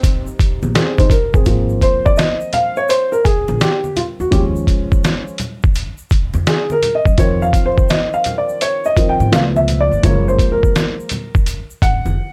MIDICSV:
0, 0, Header, 1, 5, 480
1, 0, Start_track
1, 0, Key_signature, -4, "major"
1, 0, Tempo, 714286
1, 984, Time_signature, 4, 2, 24, 8
1, 8284, End_track
2, 0, Start_track
2, 0, Title_t, "Upright piano"
2, 0, Program_c, 0, 0
2, 0, Note_on_c, 0, 55, 60
2, 0, Note_on_c, 0, 58, 60
2, 0, Note_on_c, 0, 60, 55
2, 0, Note_on_c, 0, 63, 74
2, 479, Note_off_c, 0, 60, 0
2, 485, Note_off_c, 0, 63, 0
2, 503, Note_on_c, 0, 68, 56
2, 506, Note_on_c, 0, 60, 52
2, 653, Note_off_c, 0, 68, 0
2, 655, Note_off_c, 0, 60, 0
2, 661, Note_on_c, 0, 72, 69
2, 666, Note_on_c, 0, 63, 57
2, 739, Note_off_c, 0, 72, 0
2, 742, Note_off_c, 0, 63, 0
2, 743, Note_on_c, 0, 70, 66
2, 893, Note_off_c, 0, 70, 0
2, 904, Note_on_c, 0, 68, 56
2, 907, Note_on_c, 0, 60, 48
2, 945, Note_off_c, 0, 55, 0
2, 952, Note_off_c, 0, 58, 0
2, 981, Note_off_c, 0, 60, 0
2, 983, Note_on_c, 0, 53, 48
2, 986, Note_on_c, 0, 58, 45
2, 991, Note_on_c, 0, 60, 58
2, 1131, Note_off_c, 0, 68, 0
2, 1226, Note_on_c, 0, 72, 93
2, 1381, Note_on_c, 0, 74, 91
2, 1387, Note_off_c, 0, 72, 0
2, 1458, Note_off_c, 0, 74, 0
2, 1461, Note_on_c, 0, 75, 86
2, 1705, Note_on_c, 0, 77, 94
2, 1710, Note_off_c, 0, 75, 0
2, 1851, Note_off_c, 0, 77, 0
2, 1862, Note_on_c, 0, 73, 91
2, 1944, Note_on_c, 0, 72, 97
2, 1947, Note_off_c, 0, 73, 0
2, 2090, Note_off_c, 0, 72, 0
2, 2098, Note_on_c, 0, 70, 82
2, 2176, Note_off_c, 0, 70, 0
2, 2181, Note_on_c, 0, 68, 84
2, 2426, Note_on_c, 0, 67, 81
2, 2429, Note_off_c, 0, 68, 0
2, 2648, Note_off_c, 0, 67, 0
2, 2664, Note_on_c, 0, 65, 72
2, 2699, Note_off_c, 0, 65, 0
2, 2825, Note_on_c, 0, 66, 73
2, 2876, Note_off_c, 0, 53, 0
2, 2878, Note_off_c, 0, 58, 0
2, 2880, Note_off_c, 0, 60, 0
2, 2896, Note_on_c, 0, 53, 50
2, 2900, Note_on_c, 0, 56, 49
2, 2904, Note_on_c, 0, 61, 63
2, 2906, Note_on_c, 0, 67, 76
2, 2908, Note_off_c, 0, 66, 0
2, 2959, Note_off_c, 0, 67, 0
2, 3593, Note_off_c, 0, 53, 0
2, 3595, Note_off_c, 0, 56, 0
2, 3597, Note_off_c, 0, 61, 0
2, 4356, Note_on_c, 0, 68, 74
2, 4515, Note_off_c, 0, 68, 0
2, 4515, Note_on_c, 0, 70, 80
2, 4670, Note_on_c, 0, 75, 76
2, 4674, Note_off_c, 0, 70, 0
2, 4821, Note_on_c, 0, 51, 57
2, 4824, Note_on_c, 0, 53, 50
2, 4827, Note_on_c, 0, 60, 60
2, 4832, Note_off_c, 0, 75, 0
2, 4832, Note_on_c, 0, 73, 85
2, 4987, Note_on_c, 0, 77, 78
2, 4992, Note_off_c, 0, 73, 0
2, 5145, Note_on_c, 0, 72, 83
2, 5150, Note_off_c, 0, 77, 0
2, 5309, Note_off_c, 0, 72, 0
2, 5309, Note_on_c, 0, 75, 79
2, 5469, Note_on_c, 0, 77, 78
2, 5471, Note_off_c, 0, 75, 0
2, 5615, Note_off_c, 0, 77, 0
2, 5631, Note_on_c, 0, 74, 74
2, 5791, Note_on_c, 0, 73, 86
2, 5792, Note_off_c, 0, 74, 0
2, 5951, Note_on_c, 0, 75, 85
2, 5952, Note_off_c, 0, 73, 0
2, 6014, Note_off_c, 0, 51, 0
2, 6018, Note_off_c, 0, 53, 0
2, 6020, Note_off_c, 0, 60, 0
2, 6025, Note_on_c, 0, 51, 48
2, 6028, Note_on_c, 0, 53, 46
2, 6030, Note_on_c, 0, 60, 52
2, 6109, Note_on_c, 0, 79, 78
2, 6112, Note_off_c, 0, 75, 0
2, 6240, Note_off_c, 0, 51, 0
2, 6242, Note_off_c, 0, 53, 0
2, 6243, Note_off_c, 0, 60, 0
2, 6261, Note_on_c, 0, 53, 51
2, 6265, Note_on_c, 0, 57, 49
2, 6269, Note_on_c, 0, 59, 63
2, 6271, Note_off_c, 0, 79, 0
2, 6272, Note_on_c, 0, 77, 84
2, 6307, Note_off_c, 0, 77, 0
2, 6426, Note_on_c, 0, 76, 78
2, 6589, Note_on_c, 0, 74, 85
2, 6590, Note_off_c, 0, 76, 0
2, 6718, Note_off_c, 0, 53, 0
2, 6720, Note_off_c, 0, 57, 0
2, 6723, Note_off_c, 0, 59, 0
2, 6735, Note_off_c, 0, 74, 0
2, 6744, Note_on_c, 0, 53, 51
2, 6747, Note_on_c, 0, 56, 48
2, 6751, Note_on_c, 0, 58, 61
2, 6752, Note_on_c, 0, 73, 81
2, 6909, Note_on_c, 0, 72, 82
2, 6913, Note_off_c, 0, 73, 0
2, 7069, Note_on_c, 0, 70, 78
2, 7071, Note_off_c, 0, 72, 0
2, 7437, Note_off_c, 0, 53, 0
2, 7439, Note_off_c, 0, 56, 0
2, 7440, Note_off_c, 0, 58, 0
2, 7760, Note_off_c, 0, 70, 0
2, 7944, Note_on_c, 0, 78, 88
2, 8284, Note_off_c, 0, 78, 0
2, 8284, End_track
3, 0, Start_track
3, 0, Title_t, "Tenor saxophone"
3, 0, Program_c, 1, 66
3, 0, Note_on_c, 1, 60, 101
3, 273, Note_off_c, 1, 60, 0
3, 8284, End_track
4, 0, Start_track
4, 0, Title_t, "Upright bass"
4, 0, Program_c, 2, 32
4, 420, Note_on_c, 2, 34, 84
4, 497, Note_off_c, 2, 34, 0
4, 901, Note_on_c, 2, 33, 80
4, 977, Note_off_c, 2, 33, 0
4, 984, Note_on_c, 2, 32, 94
4, 1204, Note_off_c, 2, 32, 0
4, 2342, Note_on_c, 2, 34, 91
4, 2417, Note_off_c, 2, 34, 0
4, 2822, Note_on_c, 2, 40, 81
4, 2897, Note_off_c, 2, 40, 0
4, 2903, Note_on_c, 2, 39, 93
4, 3124, Note_off_c, 2, 39, 0
4, 4264, Note_on_c, 2, 41, 85
4, 4338, Note_off_c, 2, 41, 0
4, 4740, Note_on_c, 2, 42, 81
4, 4816, Note_off_c, 2, 42, 0
4, 4825, Note_on_c, 2, 41, 103
4, 5045, Note_off_c, 2, 41, 0
4, 6182, Note_on_c, 2, 44, 88
4, 6258, Note_off_c, 2, 44, 0
4, 6264, Note_on_c, 2, 37, 98
4, 6634, Note_off_c, 2, 37, 0
4, 6662, Note_on_c, 2, 31, 81
4, 6738, Note_off_c, 2, 31, 0
4, 6742, Note_on_c, 2, 30, 101
4, 6964, Note_off_c, 2, 30, 0
4, 7943, Note_on_c, 2, 32, 84
4, 8088, Note_off_c, 2, 32, 0
4, 8100, Note_on_c, 2, 29, 81
4, 8176, Note_off_c, 2, 29, 0
4, 8284, End_track
5, 0, Start_track
5, 0, Title_t, "Drums"
5, 23, Note_on_c, 9, 36, 84
5, 24, Note_on_c, 9, 63, 42
5, 24, Note_on_c, 9, 82, 63
5, 26, Note_on_c, 9, 42, 77
5, 90, Note_off_c, 9, 36, 0
5, 91, Note_off_c, 9, 63, 0
5, 91, Note_off_c, 9, 82, 0
5, 93, Note_off_c, 9, 42, 0
5, 180, Note_on_c, 9, 82, 54
5, 248, Note_off_c, 9, 82, 0
5, 265, Note_on_c, 9, 36, 91
5, 266, Note_on_c, 9, 82, 49
5, 271, Note_on_c, 9, 42, 72
5, 332, Note_off_c, 9, 36, 0
5, 333, Note_off_c, 9, 82, 0
5, 338, Note_off_c, 9, 42, 0
5, 421, Note_on_c, 9, 63, 67
5, 421, Note_on_c, 9, 82, 48
5, 489, Note_off_c, 9, 63, 0
5, 489, Note_off_c, 9, 82, 0
5, 505, Note_on_c, 9, 64, 59
5, 505, Note_on_c, 9, 82, 63
5, 506, Note_on_c, 9, 42, 79
5, 508, Note_on_c, 9, 38, 118
5, 572, Note_off_c, 9, 64, 0
5, 572, Note_off_c, 9, 82, 0
5, 573, Note_off_c, 9, 42, 0
5, 575, Note_off_c, 9, 38, 0
5, 660, Note_on_c, 9, 63, 62
5, 660, Note_on_c, 9, 82, 45
5, 661, Note_on_c, 9, 36, 99
5, 670, Note_on_c, 9, 42, 54
5, 727, Note_off_c, 9, 63, 0
5, 727, Note_off_c, 9, 82, 0
5, 728, Note_off_c, 9, 36, 0
5, 737, Note_off_c, 9, 42, 0
5, 738, Note_on_c, 9, 36, 88
5, 743, Note_on_c, 9, 64, 59
5, 743, Note_on_c, 9, 82, 44
5, 744, Note_on_c, 9, 42, 66
5, 805, Note_off_c, 9, 36, 0
5, 810, Note_off_c, 9, 64, 0
5, 810, Note_off_c, 9, 82, 0
5, 812, Note_off_c, 9, 42, 0
5, 899, Note_on_c, 9, 82, 49
5, 900, Note_on_c, 9, 36, 97
5, 966, Note_off_c, 9, 82, 0
5, 967, Note_off_c, 9, 36, 0
5, 979, Note_on_c, 9, 82, 61
5, 982, Note_on_c, 9, 42, 97
5, 983, Note_on_c, 9, 36, 102
5, 1046, Note_off_c, 9, 82, 0
5, 1049, Note_off_c, 9, 42, 0
5, 1050, Note_off_c, 9, 36, 0
5, 1137, Note_on_c, 9, 82, 42
5, 1205, Note_off_c, 9, 82, 0
5, 1219, Note_on_c, 9, 36, 80
5, 1220, Note_on_c, 9, 82, 43
5, 1223, Note_on_c, 9, 42, 71
5, 1287, Note_off_c, 9, 36, 0
5, 1287, Note_off_c, 9, 82, 0
5, 1290, Note_off_c, 9, 42, 0
5, 1382, Note_on_c, 9, 82, 41
5, 1384, Note_on_c, 9, 36, 99
5, 1450, Note_off_c, 9, 82, 0
5, 1452, Note_off_c, 9, 36, 0
5, 1455, Note_on_c, 9, 82, 64
5, 1470, Note_on_c, 9, 42, 90
5, 1472, Note_on_c, 9, 38, 105
5, 1522, Note_off_c, 9, 82, 0
5, 1537, Note_off_c, 9, 42, 0
5, 1539, Note_off_c, 9, 38, 0
5, 1617, Note_on_c, 9, 82, 40
5, 1684, Note_off_c, 9, 82, 0
5, 1698, Note_on_c, 9, 42, 64
5, 1701, Note_on_c, 9, 64, 61
5, 1701, Note_on_c, 9, 82, 44
5, 1765, Note_off_c, 9, 42, 0
5, 1768, Note_off_c, 9, 64, 0
5, 1768, Note_off_c, 9, 82, 0
5, 1857, Note_on_c, 9, 82, 42
5, 1924, Note_off_c, 9, 82, 0
5, 1939, Note_on_c, 9, 82, 59
5, 1949, Note_on_c, 9, 42, 80
5, 2006, Note_off_c, 9, 82, 0
5, 2016, Note_off_c, 9, 42, 0
5, 2101, Note_on_c, 9, 82, 52
5, 2168, Note_off_c, 9, 82, 0
5, 2182, Note_on_c, 9, 82, 46
5, 2185, Note_on_c, 9, 36, 91
5, 2190, Note_on_c, 9, 42, 72
5, 2249, Note_off_c, 9, 82, 0
5, 2252, Note_off_c, 9, 36, 0
5, 2257, Note_off_c, 9, 42, 0
5, 2340, Note_on_c, 9, 63, 65
5, 2340, Note_on_c, 9, 82, 41
5, 2407, Note_off_c, 9, 63, 0
5, 2407, Note_off_c, 9, 82, 0
5, 2423, Note_on_c, 9, 82, 60
5, 2427, Note_on_c, 9, 42, 80
5, 2428, Note_on_c, 9, 38, 119
5, 2490, Note_off_c, 9, 82, 0
5, 2494, Note_off_c, 9, 42, 0
5, 2495, Note_off_c, 9, 38, 0
5, 2580, Note_on_c, 9, 63, 57
5, 2580, Note_on_c, 9, 82, 41
5, 2647, Note_off_c, 9, 63, 0
5, 2647, Note_off_c, 9, 82, 0
5, 2663, Note_on_c, 9, 64, 60
5, 2663, Note_on_c, 9, 82, 38
5, 2665, Note_on_c, 9, 42, 64
5, 2730, Note_off_c, 9, 64, 0
5, 2730, Note_off_c, 9, 82, 0
5, 2732, Note_off_c, 9, 42, 0
5, 2824, Note_on_c, 9, 82, 41
5, 2891, Note_off_c, 9, 82, 0
5, 2902, Note_on_c, 9, 42, 97
5, 2903, Note_on_c, 9, 36, 109
5, 2907, Note_on_c, 9, 82, 59
5, 2969, Note_off_c, 9, 42, 0
5, 2970, Note_off_c, 9, 36, 0
5, 2974, Note_off_c, 9, 82, 0
5, 3063, Note_on_c, 9, 82, 43
5, 3130, Note_off_c, 9, 82, 0
5, 3140, Note_on_c, 9, 36, 82
5, 3144, Note_on_c, 9, 42, 71
5, 3145, Note_on_c, 9, 82, 45
5, 3207, Note_off_c, 9, 36, 0
5, 3211, Note_off_c, 9, 42, 0
5, 3212, Note_off_c, 9, 82, 0
5, 3305, Note_on_c, 9, 36, 94
5, 3307, Note_on_c, 9, 82, 43
5, 3372, Note_off_c, 9, 36, 0
5, 3374, Note_off_c, 9, 82, 0
5, 3386, Note_on_c, 9, 82, 63
5, 3389, Note_on_c, 9, 42, 77
5, 3392, Note_on_c, 9, 38, 96
5, 3453, Note_off_c, 9, 82, 0
5, 3457, Note_off_c, 9, 42, 0
5, 3459, Note_off_c, 9, 38, 0
5, 3545, Note_on_c, 9, 82, 37
5, 3612, Note_off_c, 9, 82, 0
5, 3616, Note_on_c, 9, 42, 63
5, 3626, Note_on_c, 9, 64, 63
5, 3626, Note_on_c, 9, 82, 44
5, 3683, Note_off_c, 9, 42, 0
5, 3693, Note_off_c, 9, 64, 0
5, 3693, Note_off_c, 9, 82, 0
5, 3782, Note_on_c, 9, 82, 41
5, 3789, Note_on_c, 9, 36, 95
5, 3849, Note_off_c, 9, 82, 0
5, 3856, Note_off_c, 9, 36, 0
5, 3861, Note_on_c, 9, 82, 61
5, 3868, Note_on_c, 9, 42, 73
5, 3929, Note_off_c, 9, 82, 0
5, 3935, Note_off_c, 9, 42, 0
5, 4017, Note_on_c, 9, 82, 50
5, 4085, Note_off_c, 9, 82, 0
5, 4099, Note_on_c, 9, 82, 48
5, 4106, Note_on_c, 9, 36, 91
5, 4112, Note_on_c, 9, 42, 71
5, 4166, Note_off_c, 9, 82, 0
5, 4173, Note_off_c, 9, 36, 0
5, 4180, Note_off_c, 9, 42, 0
5, 4258, Note_on_c, 9, 63, 61
5, 4258, Note_on_c, 9, 82, 46
5, 4325, Note_off_c, 9, 63, 0
5, 4325, Note_off_c, 9, 82, 0
5, 4344, Note_on_c, 9, 82, 60
5, 4347, Note_on_c, 9, 42, 80
5, 4349, Note_on_c, 9, 38, 120
5, 4411, Note_off_c, 9, 82, 0
5, 4414, Note_off_c, 9, 42, 0
5, 4416, Note_off_c, 9, 38, 0
5, 4501, Note_on_c, 9, 63, 60
5, 4501, Note_on_c, 9, 82, 41
5, 4569, Note_off_c, 9, 63, 0
5, 4569, Note_off_c, 9, 82, 0
5, 4586, Note_on_c, 9, 64, 58
5, 4586, Note_on_c, 9, 82, 42
5, 4587, Note_on_c, 9, 42, 68
5, 4653, Note_off_c, 9, 64, 0
5, 4653, Note_off_c, 9, 82, 0
5, 4654, Note_off_c, 9, 42, 0
5, 4741, Note_on_c, 9, 36, 93
5, 4747, Note_on_c, 9, 82, 47
5, 4808, Note_off_c, 9, 36, 0
5, 4815, Note_off_c, 9, 82, 0
5, 4822, Note_on_c, 9, 42, 94
5, 4824, Note_on_c, 9, 36, 109
5, 4829, Note_on_c, 9, 82, 59
5, 4890, Note_off_c, 9, 42, 0
5, 4892, Note_off_c, 9, 36, 0
5, 4897, Note_off_c, 9, 82, 0
5, 4987, Note_on_c, 9, 82, 43
5, 5054, Note_off_c, 9, 82, 0
5, 5061, Note_on_c, 9, 36, 86
5, 5065, Note_on_c, 9, 42, 66
5, 5067, Note_on_c, 9, 82, 47
5, 5128, Note_off_c, 9, 36, 0
5, 5132, Note_off_c, 9, 42, 0
5, 5135, Note_off_c, 9, 82, 0
5, 5226, Note_on_c, 9, 36, 102
5, 5228, Note_on_c, 9, 82, 43
5, 5293, Note_off_c, 9, 36, 0
5, 5295, Note_off_c, 9, 82, 0
5, 5301, Note_on_c, 9, 82, 69
5, 5311, Note_on_c, 9, 42, 83
5, 5313, Note_on_c, 9, 38, 99
5, 5369, Note_off_c, 9, 82, 0
5, 5378, Note_off_c, 9, 42, 0
5, 5381, Note_off_c, 9, 38, 0
5, 5466, Note_on_c, 9, 82, 39
5, 5533, Note_off_c, 9, 82, 0
5, 5538, Note_on_c, 9, 42, 66
5, 5551, Note_on_c, 9, 64, 63
5, 5551, Note_on_c, 9, 82, 42
5, 5606, Note_off_c, 9, 42, 0
5, 5618, Note_off_c, 9, 64, 0
5, 5618, Note_off_c, 9, 82, 0
5, 5706, Note_on_c, 9, 82, 43
5, 5773, Note_off_c, 9, 82, 0
5, 5787, Note_on_c, 9, 42, 77
5, 5788, Note_on_c, 9, 82, 60
5, 5854, Note_off_c, 9, 42, 0
5, 5856, Note_off_c, 9, 82, 0
5, 5945, Note_on_c, 9, 82, 54
5, 6012, Note_off_c, 9, 82, 0
5, 6025, Note_on_c, 9, 36, 87
5, 6026, Note_on_c, 9, 82, 52
5, 6029, Note_on_c, 9, 42, 69
5, 6092, Note_off_c, 9, 36, 0
5, 6093, Note_off_c, 9, 82, 0
5, 6097, Note_off_c, 9, 42, 0
5, 6184, Note_on_c, 9, 63, 61
5, 6184, Note_on_c, 9, 82, 45
5, 6251, Note_off_c, 9, 63, 0
5, 6251, Note_off_c, 9, 82, 0
5, 6267, Note_on_c, 9, 42, 77
5, 6268, Note_on_c, 9, 38, 120
5, 6269, Note_on_c, 9, 82, 60
5, 6334, Note_off_c, 9, 42, 0
5, 6335, Note_off_c, 9, 38, 0
5, 6336, Note_off_c, 9, 82, 0
5, 6426, Note_on_c, 9, 63, 64
5, 6426, Note_on_c, 9, 82, 42
5, 6494, Note_off_c, 9, 63, 0
5, 6494, Note_off_c, 9, 82, 0
5, 6504, Note_on_c, 9, 42, 64
5, 6511, Note_on_c, 9, 64, 56
5, 6511, Note_on_c, 9, 82, 44
5, 6572, Note_off_c, 9, 42, 0
5, 6578, Note_off_c, 9, 64, 0
5, 6578, Note_off_c, 9, 82, 0
5, 6670, Note_on_c, 9, 82, 46
5, 6737, Note_off_c, 9, 82, 0
5, 6743, Note_on_c, 9, 36, 103
5, 6743, Note_on_c, 9, 42, 99
5, 6751, Note_on_c, 9, 82, 59
5, 6810, Note_off_c, 9, 42, 0
5, 6811, Note_off_c, 9, 36, 0
5, 6818, Note_off_c, 9, 82, 0
5, 6912, Note_on_c, 9, 82, 44
5, 6979, Note_off_c, 9, 82, 0
5, 6979, Note_on_c, 9, 36, 82
5, 6984, Note_on_c, 9, 42, 75
5, 6989, Note_on_c, 9, 82, 41
5, 7047, Note_off_c, 9, 36, 0
5, 7051, Note_off_c, 9, 42, 0
5, 7056, Note_off_c, 9, 82, 0
5, 7144, Note_on_c, 9, 36, 97
5, 7151, Note_on_c, 9, 82, 45
5, 7212, Note_off_c, 9, 36, 0
5, 7218, Note_off_c, 9, 82, 0
5, 7228, Note_on_c, 9, 42, 80
5, 7228, Note_on_c, 9, 82, 70
5, 7230, Note_on_c, 9, 38, 105
5, 7295, Note_off_c, 9, 42, 0
5, 7295, Note_off_c, 9, 82, 0
5, 7298, Note_off_c, 9, 38, 0
5, 7391, Note_on_c, 9, 82, 40
5, 7454, Note_on_c, 9, 42, 67
5, 7458, Note_off_c, 9, 82, 0
5, 7469, Note_on_c, 9, 63, 42
5, 7469, Note_on_c, 9, 64, 61
5, 7469, Note_on_c, 9, 82, 44
5, 7521, Note_off_c, 9, 42, 0
5, 7536, Note_off_c, 9, 63, 0
5, 7536, Note_off_c, 9, 64, 0
5, 7536, Note_off_c, 9, 82, 0
5, 7626, Note_on_c, 9, 36, 94
5, 7627, Note_on_c, 9, 82, 43
5, 7693, Note_off_c, 9, 36, 0
5, 7694, Note_off_c, 9, 82, 0
5, 7704, Note_on_c, 9, 42, 73
5, 7706, Note_on_c, 9, 82, 63
5, 7771, Note_off_c, 9, 42, 0
5, 7774, Note_off_c, 9, 82, 0
5, 7865, Note_on_c, 9, 82, 54
5, 7932, Note_off_c, 9, 82, 0
5, 7943, Note_on_c, 9, 36, 90
5, 7947, Note_on_c, 9, 42, 70
5, 7948, Note_on_c, 9, 82, 48
5, 8010, Note_off_c, 9, 36, 0
5, 8014, Note_off_c, 9, 42, 0
5, 8016, Note_off_c, 9, 82, 0
5, 8102, Note_on_c, 9, 63, 62
5, 8102, Note_on_c, 9, 82, 43
5, 8169, Note_off_c, 9, 63, 0
5, 8169, Note_off_c, 9, 82, 0
5, 8284, End_track
0, 0, End_of_file